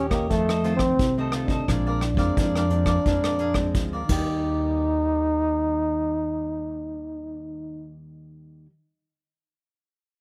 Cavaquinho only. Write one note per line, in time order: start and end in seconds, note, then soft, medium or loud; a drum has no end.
0.00 0.12 G4 medium
0.00 0.11 C#5 medium
0.00 0.10 D#5 medium
0.11 0.29 G4 medium
0.11 0.28 C#5 medium
0.11 0.28 D#5 medium
0.32 0.47 F4 soft
0.32 0.47 A4 medium
0.32 0.47 C5 medium
0.32 0.48 D#5 medium
0.50 0.64 A4 medium
0.50 0.64 C5 medium
0.50 0.65 D#5 medium
0.64 0.80 F4 medium
0.64 0.80 A4 medium
0.64 0.80 C5 medium
0.64 0.80 D#5 medium
0.81 muted cavaquinho stroke soft
1.19 1.32 A4 medium
1.19 1.33 C5 medium
1.19 1.33 D#5 medium
1.33 1.49 F4 soft
1.33 1.50 A4 soft
1.33 1.49 C5 medium
1.33 1.48 D#5 medium
1.49 1.67 A4 medium
1.49 1.66 C5 medium
1.49 1.66 D#5 medium
1.68 1.84 G#4 soft
1.68 1.84 A#4 soft
1.68 1.85 D5 medium
1.68 1.85 F5 soft
1.87 2.01 A#4 medium
1.87 2.02 D5 medium
1.87 2.01 F5 medium
2.02 muted cavaquinho stroke soft
2.18 2.35 A#4 medium
2.18 2.35 D5 medium
2.18 2.35 F5 medium
2.39 2.54 G#4 soft
2.39 2.54 A#4 soft
2.39 2.54 D5 medium
2.39 2.54 F5 soft
2.57 2.88 A#4 medium
2.57 2.86 D5 medium
2.57 2.86 F5 medium
2.87 3.04 A#4 medium
2.87 3.03 D5 medium
2.87 3.04 F5 medium
3.06 3.22 G#4 soft
3.06 3.22 A#4 soft
3.06 3.23 D5 medium
3.06 3.23 F5 medium
3.24 3.39 A#4 medium
3.24 3.40 D5 medium
3.24 3.40 F5 medium
3.40 3.55 G#4 medium
3.40 3.55 A#4 medium
3.40 3.55 D5 medium
3.40 3.55 F5 medium
3.56 muted cavaquinho stroke soft
3.93 4.09 A#4 medium
3.93 4.08 D5 medium
3.93 4.09 F5 medium
4.10 8.70 G4 medium
4.10 8.71 D5 medium
4.10 8.70 D#5 medium